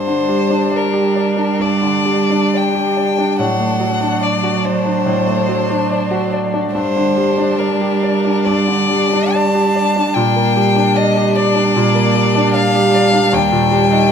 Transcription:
0.00 1.56 G2 soft
0.00 3.41 G3 soft
0.00 3.35 D4 soft
0.00 0.77 C5 soft
0.07 0.43 D3 soft
0.29 0.64 G3 soft
0.51 0.86 D4 soft
0.72 1.07 D5 soft
0.76 1.63 A#4 soft
0.93 1.29 G4 soft
1.16 1.51 D5 soft
1.37 1.73 D4 soft
1.59 3.35 G2 soft
1.59 2.58 D5 soft
1.82 2.21 D3 soft
2.05 2.45 G3 soft
2.30 2.67 D4 soft
2.54 2.89 D5 soft
2.54 3.40 G5 soft
2.75 3.10 G4 soft
2.97 3.31 D5 soft
3.18 3.39 D4 soft
3.39 5.02 A2 soft
3.39 6.74 F#3 soft
3.39 6.71 D4 soft
3.39 4.24 F#5 soft
3.60 3.93 A3 soft
3.80 4.14 F#3 soft
4.01 4.35 D4 soft
4.21 4.55 D5 soft
4.21 4.67 D5 soft
4.43 4.77 F#4 soft
4.65 6.33 C5 soft
4.65 4.98 D5 soft
4.86 5.19 D4 soft
5.06 6.70 A2 soft
5.27 5.61 A3 soft
5.48 5.82 F#3 soft
5.70 6.03 D4 soft
5.91 6.24 D5 soft
6.11 6.45 F#4 soft
6.33 6.66 D5 soft
6.54 6.75 D4 soft
6.74 8.41 G2 soft
6.74 10.10 G3 soft
6.74 10.10 D4 soft
6.74 7.60 C5 soft
6.96 7.30 D3 soft
7.17 7.51 G3 soft
7.38 7.72 D4 soft
7.59 8.46 A#4 soft
7.59 7.94 D5 soft
7.81 8.15 G4 soft
8.03 8.37 D5 soft
8.25 8.58 D4 soft
8.45 10.11 G2 soft
8.45 9.35 D5 soft
8.67 9.03 D3 soft
8.90 9.25 G3 soft
9.13 9.46 D4 soft
9.33 9.67 D5 soft
9.33 10.16 A5 medium
9.55 9.87 G4 soft
9.75 10.07 D5 soft
9.96 10.15 D4 soft
10.14 11.72 A#2 soft
10.14 13.29 G3 soft
10.14 13.28 D4 soft
10.14 10.98 G5 medium
10.36 10.68 A#3 soft
10.56 10.88 G3 soft
10.76 11.08 D4 soft
10.96 11.28 D5 soft
10.96 11.37 D#5 soft
11.17 11.48 G4 soft
11.35 12.54 D5 soft
11.35 11.67 D5 soft
11.55 11.87 D4 soft
11.76 13.29 A#2 soft
11.95 12.27 A#3 soft
12.16 12.47 G3 soft
12.35 12.66 D4 soft
12.54 12.86 D5 soft
12.54 13.35 F5 medium
12.74 13.05 G4 soft
12.94 13.25 D5 soft
13.13 13.33 D4 soft
13.32 14.12 D#2 soft
13.32 14.12 G3 soft
13.32 14.12 D4 soft
13.32 14.12 G5 medium
13.52 13.83 A#2 soft
13.71 14.02 G3 soft
13.91 14.12 D#4 soft

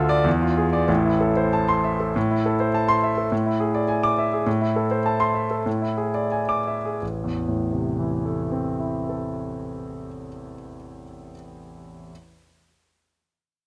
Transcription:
0.00 0.23 D2 medium
0.00 0.28 F4 medium
0.00 0.19 A4 medium
0.09 0.25 D5 medium
0.24 0.86 E2 medium
0.41 0.66 F4 medium
0.57 0.83 G#4 medium
0.73 0.89 D5 medium
0.88 2.11 A1 medium
0.88 2.12 A2 medium
1.05 1.31 E4 medium
1.21 1.46 A4 medium
1.37 1.62 C5 medium
1.53 1.78 A5 medium
1.68 1.94 C6 medium
1.84 2.09 E5 medium
2.00 2.15 A4 medium
2.16 3.28 A2 medium
2.31 2.54 E4 medium
2.46 2.69 A4 medium
2.60 2.83 C5 medium
2.74 2.97 A5 medium
2.88 3.11 C6 medium
3.04 3.26 E5 medium
3.17 3.32 A4 medium
3.32 4.42 A2 medium
3.46 3.69 E4 medium
3.60 3.83 G#4 medium
3.75 3.97 D5 medium
3.88 4.11 G#5 medium
4.03 4.26 D6 medium
4.18 4.41 E5 medium
4.33 4.47 G#4 medium
4.46 5.62 A2 medium
4.61 4.84 E4 medium
4.76 4.99 A4 medium
4.91 5.14 C5 medium
5.06 5.29 A5 medium
5.20 5.44 C6 medium
5.35 5.59 E5 medium
5.51 5.66 A4 medium
5.66 6.98 A2 medium
5.82 6.08 E4 medium
5.97 6.24 G#4 medium
6.14 6.41 D5 medium
6.31 6.59 G#5 medium
6.49 6.77 D6 medium
6.67 6.95 E5 soft
6.85 7.02 G#4 soft
7.02 10.06 A1 soft
7.24 10.28 E2 soft
7.48 10.52 A2 soft
7.72 10.76 C3 soft
7.99 11.02 E3 soft
8.25 11.29 A3 soft
8.52 11.33 C4 soft
8.80 11.33 E4 soft
9.09 11.34 A4 soft

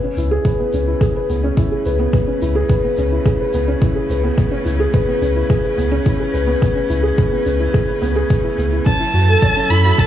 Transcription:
0.00 8.86 C#3 medium
0.00 0.17 C#4 medium
0.10 10.07 B4 medium
0.17 0.39 C#2 loud
0.17 0.31 E4 medium
0.17 shaker medium
0.31 10.07 C#4 medium
0.31 0.44 G#4 medium
0.45 0.59 B4 medium
0.45 kick medium
0.45 shaker soft
0.60 0.67 B3 medium
0.73 0.95 C#2 medium
0.73 0.87 C#4 medium
0.73 shaker medium
0.87 0.95 E4 medium
1.01 1.15 G#4 medium
1.01 kick medium
1.01 shaker soft
1.16 1.29 B4 medium
1.29 1.51 C#2 medium
1.29 1.43 B3 medium
1.29 shaker medium
1.44 1.57 C#4 medium
1.57 1.71 E4 medium
1.57 kick medium
1.57 shaker soft
1.71 1.79 G#4 medium
1.85 2.07 C#2 medium
1.85 1.93 B4 medium
1.85 shaker medium
1.99 2.12 B3 medium
2.13 2.27 B3 medium
2.13 kick loud
2.13 shaker medium
2.27 2.41 C#4 medium
2.42 2.63 C#2 medium
2.42 2.55 E4 medium
2.42 shaker medium
2.55 2.69 G#4 medium
2.69 2.83 B4 medium
2.69 kick loud
2.69 shaker soft
2.84 2.92 B3 medium
2.97 3.19 C#2 medium
2.97 3.11 C#4 medium
2.97 shaker medium
3.12 3.20 E4 medium
3.25 3.39 G#4 medium
3.25 kick medium
3.25 shaker medium
3.40 3.53 B4 medium
3.53 3.75 C#2 medium
3.53 3.67 B3 medium
3.53 shaker medium
3.68 3.81 C#4 medium
3.82 3.95 E4 medium
3.82 kick loud
3.82 shaker medium
3.95 4.03 G#4 medium
4.09 4.31 C#2 medium
4.09 4.18 B4 medium
4.09 shaker medium
4.23 4.36 B3 medium
4.37 4.51 B3 medium
4.37 kick loud
4.37 shaker medium
4.51 4.65 C#4 medium
4.65 4.87 C#2 medium
4.65 4.79 E4 medium
4.65 shaker medium
4.80 4.93 G#4 loud
4.94 5.07 B4 medium
4.94 kick medium
4.94 shaker medium
5.08 5.16 B3 medium
5.21 5.43 C#2 medium
5.21 5.35 C#4 medium
5.21 shaker medium
5.36 5.44 E4 medium
5.50 5.63 G#4 medium
5.50 kick loud
5.50 shaker medium
5.64 5.77 B4 medium
5.77 5.99 C#2 medium
5.77 5.91 B3 medium
5.77 shaker medium
5.92 6.05 C#4 loud
6.05 6.19 E4 medium
6.05 kick medium
6.05 shaker medium
6.19 6.28 G#4 medium
6.33 6.56 C#2 medium
6.33 6.42 B4 medium
6.33 shaker medium
6.47 6.60 B3 medium
6.62 6.75 B3 medium
6.62 kick loud
6.62 shaker medium
6.75 6.89 C#4 medium
6.89 7.12 C#2 medium
6.89 7.03 E4 medium
6.89 shaker medium
7.03 7.17 G#4 medium
7.17 7.31 B4 medium
7.17 kick medium
7.17 shaker medium
7.32 7.40 B3 medium
7.46 7.68 C#2 medium
7.46 7.59 C#4 medium
7.46 shaker medium
7.60 7.68 E4 medium
7.73 7.87 G#4 medium
7.73 kick loud
7.73 shaker medium
7.87 8.01 B4 medium
8.02 8.24 C#2 medium
8.02 8.15 B3 medium
8.02 shaker medium
8.16 8.29 G#4 medium
8.30 8.44 B3 medium
8.30 kick loud
8.30 shaker medium
8.44 8.57 E4 medium
8.58 8.80 C#2 medium
8.58 8.72 B3 medium
8.58 shaker medium
8.72 8.86 E4 medium
8.86 10.07 F#3 medium
8.86 9.00 C#4 medium
8.86 9.71 A5 loud
8.86 kick medium
8.86 shaker medium
9.00 9.13 E4 medium
9.13 9.36 F#2 medium
9.13 9.28 F#4 medium
9.13 10.07 A4 medium
9.13 shaker medium
9.29 9.42 A4 medium
9.40 9.56 C#5 medium
9.40 10.07 E5 medium
9.40 kick medium
9.40 shaker soft
9.56 9.64 C#4 medium
9.69 9.92 F#2 medium
9.69 9.84 E4 medium
9.69 10.00 B5 loud
9.69 shaker medium
9.85 9.93 F#4 medium
9.98 10.07 A4 medium
9.98 10.07 A5 loud
9.98 kick loud
9.98 shaker medium

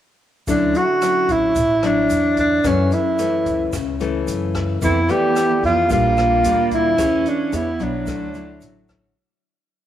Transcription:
0.47 0.73 D2 medium
0.47 1.53 D3 soft
0.47 0.82 F#3 medium
0.47 0.83 C#4 soft
0.47 0.78 D4 medium
0.47 0.83 E4 medium
0.47 kick medium
0.47 closed hi-hat soft
0.47 shaker medium
0.74 1.33 F#4 medium
0.74 closed hi-hat soft
0.74 shaker soft
1.02 1.55 F#3 soft
1.02 1.56 C#4 soft
1.02 1.56 E4 medium
1.02 cross-stick medium
1.02 closed hi-hat soft
1.02 shaker medium
1.29 1.54 A1 medium
1.29 1.87 E4 medium
1.29 kick soft
1.29 closed hi-hat soft
1.29 shaker soft
1.56 2.06 A1 medium
1.56 2.62 A2 soft
1.56 kick soft
1.56 closed hi-hat soft
1.56 shaker medium
1.83 2.60 F#3 medium
1.83 2.39 D4 medium
1.83 2.60 E4 medium
1.83 cross-stick medium
1.83 closed hi-hat soft
1.83 shaker soft
2.10 2.61 E2 medium
2.10 closed hi-hat soft
2.10 shaker medium
2.37 2.68 D4 medium
2.37 kick soft
2.37 closed hi-hat soft
2.37 shaker soft
2.64 3.70 F#2 medium
2.64 2.90 F#2 medium
2.64 2.99 E3 medium
2.64 2.99 A3 soft
2.64 2.99 C#4 medium
2.64 2.95 C#4 medium
2.64 kick soft
2.64 cross-stick soft
2.64 closed hi-hat soft
2.64 shaker medium
2.91 3.74 E4 medium
2.91 closed hi-hat soft
2.91 shaker soft
3.19 3.73 E3 soft
3.19 3.73 A3 soft
3.19 3.73 C#4 medium
3.19 closed hi-hat soft
3.19 shaker medium
3.46 3.71 C#2 medium
3.46 kick soft
3.46 closed hi-hat soft
3.46 shaker soft
3.73 4.23 C#2 medium
3.73 4.79 C#3 soft
3.73 kick soft
3.73 cross-stick medium
3.73 closed hi-hat soft
3.73 shaker medium
4.00 4.77 E3 medium
4.00 4.77 A3 medium
4.00 4.78 C#4 medium
4.00 closed hi-hat soft
4.00 shaker soft
4.27 4.78 F#2 medium
4.27 closed hi-hat soft
4.27 shaker medium
4.54 kick soft
4.54 cross-stick medium
4.54 closed hi-hat soft
4.54 shaker soft
4.81 5.87 F2 medium
4.81 5.07 F2 medium
4.81 4.98 E3 medium
4.81 4.98 A3 medium
4.81 5.91 B3 medium
4.81 4.98 C4 soft
4.81 5.12 E4 medium
4.81 kick soft
4.81 closed hi-hat soft
4.81 shaker medium
5.08 5.86 E3 medium
5.08 5.86 A3 medium
5.08 5.64 G4 medium
5.08 5.64 D5 medium
5.08 closed hi-hat soft
5.08 shaker soft
5.36 cross-stick medium
5.36 closed hi-hat soft
5.36 shaker medium
5.63 5.88 F2 medium
5.63 5.89 F4 loud
5.63 kick soft
5.63 closed hi-hat soft
5.63 shaker soft
5.90 6.41 A#1 medium
5.90 6.96 A#2 medium
5.90 6.40 G3 medium
5.90 6.98 A#3 loud
5.90 6.40 D4 medium
5.90 6.40 F4 medium
5.90 6.68 F4 medium
5.90 kick medium
5.90 closed hi-hat soft
5.90 shaker medium
6.17 cross-stick medium
6.17 closed hi-hat soft
6.17 shaker soft
6.44 6.95 D2 medium
6.44 6.94 G3 medium
6.44 6.94 D4 medium
6.44 6.95 F4 medium
6.44 closed hi-hat soft
6.44 shaker medium
6.71 7.30 E4 medium
6.71 kick soft
6.71 closed hi-hat soft
6.71 shaker soft
6.98 7.24 E2 medium
6.98 7.50 E3 medium
6.98 7.55 C#4 medium
6.98 7.35 G#4 medium
6.98 7.35 C#5 medium
6.98 kick soft
6.98 cross-stick medium
6.98 closed hi-hat soft
6.98 shaker medium
7.26 7.57 D4 medium
7.26 closed hi-hat soft
7.26 shaker soft
7.52 7.78 E2 medium
7.52 8.09 B3 loud
7.52 7.68 D4 soft
7.52 7.84 E4 medium
7.52 7.69 G#4 soft
7.52 7.69 C#5 soft
7.52 closed hi-hat soft
7.52 shaker medium
7.80 8.05 B1 medium
7.80 8.30 F#3 medium
7.80 8.90 D4 medium
7.80 8.30 E4 medium
7.80 8.30 C#5 soft
7.80 kick soft
7.80 closed hi-hat soft
7.80 shaker soft
8.07 8.58 D2 medium
8.07 9.13 D3 soft
8.07 8.62 A3 medium
8.07 kick medium
8.07 cross-stick medium
8.07 closed hi-hat soft
8.07 shaker medium
8.34 9.14 F#3 medium
8.34 9.14 E4 medium
8.34 closed hi-hat soft
8.34 shaker soft
8.61 9.11 A1 medium
8.61 9.15 F#3 medium
8.61 closed hi-hat soft
8.61 shaker medium
8.88 kick soft
8.88 cross-stick medium
8.88 closed hi-hat soft
8.88 shaker soft

